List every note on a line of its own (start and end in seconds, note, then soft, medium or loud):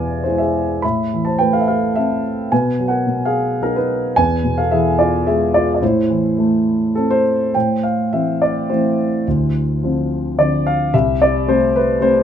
0.00 0.79 E2 medium
0.00 0.52 B2 soft
0.00 0.81 E3 soft
0.00 0.40 G#4 medium
0.00 0.21 B4 medium
0.00 0.85 D5 medium
0.00 0.38 E5 medium
0.00 0.85 F5 medium
0.00 0.26 G#5 medium
0.23 0.82 G#3 soft
0.23 0.39 E4 soft
0.23 0.39 C5 medium
0.38 0.80 G#4 medium
0.38 0.82 E5 medium
0.82 2.48 A2 soft
0.82 1.23 E5 medium
0.82 1.27 B5 medium
1.14 2.22 E3 soft
1.25 1.39 C5 medium
1.25 1.38 A5 medium
1.39 2.49 A3 soft
1.39 1.53 B4 medium
1.39 1.54 G5 medium
1.53 1.61 A4 medium
1.53 1.61 F5 medium
1.60 1.67 E5 medium
1.68 1.95 A4 medium
1.68 1.97 F5 medium
1.96 2.50 C4 soft
1.96 2.48 A4 medium
1.96 2.47 E5 medium
2.52 3.05 B2 medium
2.52 2.86 B4 medium
2.52 2.89 G#5 medium
2.79 3.60 F#3 soft
2.88 3.23 A#4 medium
2.88 3.26 F#5 medium
3.07 4.13 B2 medium
3.25 3.59 G#4 medium
3.25 3.62 F5 medium
3.61 4.14 F#3 soft
3.61 3.75 D#4 medium
3.61 3.76 A#4 medium
3.76 4.14 D#4 medium
3.76 4.14 B4 medium
4.16 5.78 E2 medium
4.16 4.55 B4 medium
4.16 4.59 G#5 medium
4.44 5.50 B2 medium
4.58 4.71 A4 medium
4.58 4.72 F5 medium
4.71 5.79 E3 medium
4.71 4.97 G#4 medium
4.71 4.99 E5 medium
4.99 5.25 F4 medium
4.99 5.27 D5 medium
5.27 5.80 G#3 soft
5.27 5.53 G#4 medium
5.27 5.55 E5 medium
5.54 5.74 F4 medium
5.54 5.73 D5 medium
5.74 5.81 D5 medium
5.81 7.51 A2 medium
5.81 6.92 E4 medium
5.81 6.92 C5 medium
6.10 7.23 E3 medium
6.38 7.52 A3 medium
6.95 7.54 C4 medium
6.95 7.11 A4 medium
7.11 7.52 C5 medium
7.54 9.22 A2 medium
7.54 8.37 C5 soft
7.54 7.84 G5 medium
7.83 8.13 F5 medium
8.13 8.68 E3 soft
8.13 8.68 A3 soft
8.13 8.69 C4 soft
8.13 8.39 E5 medium
8.42 8.71 D5 medium
8.69 9.25 E3 soft
8.69 9.25 A3 soft
8.69 9.25 C4 soft
8.69 10.34 E4 medium
8.69 10.34 C5 medium
9.28 10.90 D2 medium
9.83 10.36 D3 soft
9.83 10.37 F3 soft
9.83 10.37 C4 soft
10.38 10.91 D3 soft
10.38 10.92 F3 soft
10.38 10.92 C4 soft
10.38 10.67 D5 medium
10.67 10.92 F5 medium
10.94 12.23 C2 medium
10.94 11.71 G4 medium
10.94 11.22 E5 medium
11.22 11.49 D5 medium
11.47 11.99 G3 soft
11.47 11.99 A3 soft
11.47 11.99 C4 medium
11.47 11.76 C5 medium
11.76 12.03 B4 medium
12.00 12.23 G3 soft
12.00 12.23 A3 soft
12.00 12.23 C4 medium
12.00 12.23 C5 medium